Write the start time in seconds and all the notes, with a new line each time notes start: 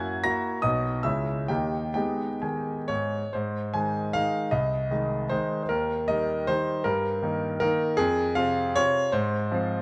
Already playing: F#2 A#3 E4 F#4 F#5 G#5 F#6 G#6
0.24 A#3 E4 F#4 A#5 A#6
0.62 B1 B3 D#4 F#4 D#5 D#6
1.03 C#2 G#3 C#4 E4 E5 E6
1.48 D#2 D#3 A#3 D#4 G4 G5
1.94 G#3 B3 D#4 G4 G5
2.42 D#3 G#4 G#5
2.88 G#2 C#5
3.33 G#2 C5
3.74 D#3 G#3 D#4 G#5
4.13 D#3 G#3 D#4 F5
4.51 C2 D#5
4.91 D#3 G#3 D#4
5.29 D#3 G#3 D#4 C5
5.63 C5
5.69 D#2 A#4
6.08 D#3 G3 D#4 D#5
6.47 D#3 G3 D#4 C5
6.84 G2 A#4
7.23 D#3 A#3 D#4
7.60 D#3 A#3 D#4 A#4
7.97 F2 G#4
8.35 C3 C4 F4 F5
8.76 C3 C4 F4 C#5
9.12 G#2 C5
9.52 F3 C4 F4